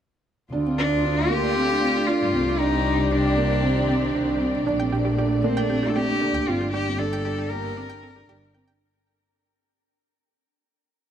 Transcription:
0.52 1.64 D2 loud
0.52 2.58 A3 medium
0.52 0.63 D4 medium
0.52 2.58 F4 medium
0.52 8.77 D5 medium
0.66 0.76 C4 medium
0.78 1.31 D4 loud
0.78 1.00 D4 medium
1.05 1.26 D4 loud
1.29 1.51 A#3 medium
1.29 2.08 G4 loud
1.56 1.67 C4 medium
1.69 1.80 D4 medium
1.82 1.93 C4 medium
1.95 2.06 D4 medium
2.07 2.29 D4 medium
2.07 2.61 F4 loud
2.21 2.31 G2 medium
2.34 4.10 C2 loud
2.34 2.44 C4 medium
2.47 2.57 D4 medium
2.58 4.64 C3 medium
2.58 4.64 D#3 medium
2.58 4.64 C4 medium
2.58 2.70 D4 loud
2.58 3.13 D#4 loud
2.58 4.64 G4 medium
2.72 2.83 C4 medium
2.86 3.07 D4 medium
3.11 3.33 D4 loud
3.11 4.15 D4 medium
3.37 3.58 A#3 medium
3.62 3.73 C4 medium
3.76 3.86 D4 medium
3.88 3.99 C4 medium
4.02 4.13 D4 medium
4.15 4.62 C2 loud
4.15 4.36 D4 loud
4.40 4.51 C4 medium
4.53 4.64 D4 medium
4.66 5.79 A#1 loud
4.66 6.71 A3 medium
4.66 8.76 A#3 medium
4.66 4.77 D4 loud
4.66 4.72 D4 medium
4.79 4.90 C4 medium
4.79 4.83 G5 loud
4.92 5.13 D4 medium
4.92 4.98 G4 medium
5.05 5.11 G4 medium
5.17 5.39 D4 medium
5.17 5.24 G4 medium
5.43 5.65 A#3 medium
5.43 5.59 C4 medium
5.43 5.49 D4 medium
5.57 5.90 D4 medium
5.57 5.60 G5 loud
5.70 5.80 C4 medium
5.70 5.75 G4 medium
5.83 5.93 D4 medium
5.83 5.88 G4 medium
5.88 5.97 A4 medium
5.95 6.06 C4 medium
5.95 6.01 G4 medium
5.95 6.50 G4 loud
6.08 6.19 D4 medium
6.21 6.42 D4 loud
6.21 6.27 D4 medium
6.34 6.44 D2 medium
6.34 6.38 G5 loud
6.47 8.24 G1 loud
6.47 6.58 C4 medium
6.47 6.73 F4 loud
6.47 6.53 G4 medium
6.61 6.71 D4 medium
6.61 6.66 G4 medium
6.73 8.79 G3 medium
6.73 6.84 D4 loud
6.73 7.00 G4 loud
6.73 6.79 G4 medium
6.87 6.97 C4 medium
6.99 7.20 D4 medium
6.99 7.05 D4 medium
6.99 7.52 A4 loud
7.13 7.16 G5 loud
7.25 7.47 D4 loud
7.25 7.31 G4 medium
7.39 7.44 G4 medium
7.51 7.72 A#3 medium
7.51 7.57 G4 medium
7.51 8.54 A#4 loud
7.77 7.87 C4 medium
7.77 7.82 D4 medium
7.90 8.01 D4 medium
7.90 7.93 G5 loud
8.03 8.13 C4 medium
8.03 8.08 A4 medium
8.16 8.27 D4 medium
8.16 8.19 G4 medium
8.28 8.75 G1 loud
8.28 8.50 D4 loud
8.28 8.34 G4 loud
8.54 8.65 C4 medium
8.54 8.60 G5 medium
8.68 8.78 D4 medium
8.68 8.73 G5 loud

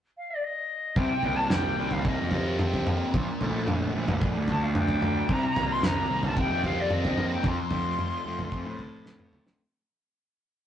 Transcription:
0.17 0.32 F5 medium
0.30 0.45 D5 medium
0.43 0.98 D#5 medium
0.96 1.09 C2 medium
0.96 2.33 C3 medium
0.96 1.37 G5 medium
0.96 kick medium
0.96 floor tom medium
1.23 1.73 C2 medium
1.23 1.78 A#3 medium
1.23 floor tom medium
1.36 1.52 A5 medium
1.50 2.88 D#3 medium
1.50 1.94 G5 medium
1.50 snare medium
1.50 mid tom medium
1.79 2.03 C2 medium
1.79 2.88 A#3 medium
1.91 2.06 F5 medium
1.91 floor tom medium
2.05 2.17 C2 medium
2.05 2.60 C4 medium
2.05 2.56 D#5 medium
2.05 kick medium
2.21 3.05 F2 medium
2.31 3.14 G4 medium
2.31 floor tom medium
2.59 3.15 C4 medium
2.59 mid tom medium
2.73 floor tom medium
2.87 3.41 A#3 medium
2.87 mid tom medium
3.14 3.26 A#1 medium
3.14 4.50 A#2 medium
3.14 kick medium
3.14 floor tom medium
3.41 3.90 A#1 medium
3.41 3.94 A3 medium
3.41 floor tom medium
3.68 5.04 D3 medium
3.68 mid tom medium
3.95 4.20 A#1 medium
3.95 5.02 A3 medium
4.08 floor tom medium
4.08 mid tom medium
4.22 4.34 A#1 medium
4.22 4.74 D4 medium
4.22 kick medium
4.36 5.21 D2 medium
4.48 5.31 F4 medium
4.48 4.62 A5 medium
4.48 floor tom medium
4.63 4.69 F5 medium
4.75 5.30 D4 medium
4.75 5.32 G5 medium
4.75 mid tom medium
4.88 floor tom medium
5.02 5.30 A3 medium
5.02 mid tom medium
5.29 5.41 C2 medium
5.29 6.65 C3 medium
5.29 5.73 A#5 loud
5.29 kick medium
5.29 floor tom medium
5.56 6.05 C2 medium
5.56 6.10 A#3 medium
5.56 floor tom medium
5.72 5.86 C6 medium
5.83 7.18 D#3 medium
5.83 6.29 A#5 medium
5.83 snare medium
5.83 mid tom medium
6.10 6.35 C2 medium
6.10 7.17 A#3 medium
6.23 floor tom medium
6.27 6.39 A5 medium
6.37 6.49 C2 medium
6.37 6.91 C4 medium
6.37 6.64 G5 medium
6.37 kick medium
6.50 7.35 F2 medium
6.64 7.45 G4 medium
6.64 6.82 F5 medium
6.64 floor tom medium
6.80 6.95 D5 medium
6.90 8.53 C4 medium
6.90 7.32 D#5 medium
6.90 mid tom medium
7.05 floor tom medium
7.17 7.45 A#3 medium
7.17 mid tom medium
7.33 7.48 G5 medium
7.43 8.79 F2 medium
7.43 7.57 F2 medium
7.43 9.07 C6 medium
7.43 kick medium
7.43 floor tom medium
7.71 8.20 F2 medium
7.71 8.25 A3 medium
7.71 floor tom medium
7.99 9.33 F3 medium
7.99 mid tom medium
8.26 8.50 F2 medium
8.26 9.31 A3 medium
8.39 floor tom medium
8.39 mid tom medium
8.52 8.64 F2 medium
8.52 9.04 C4 medium
8.52 kick medium
8.66 9.50 A2 medium
8.79 9.60 F4 medium
8.79 floor tom medium
9.05 9.60 C4 medium
9.05 snare medium
9.19 mid tom medium
9.32 9.60 A3 medium
9.32 mid tom medium
9.47 snare medium

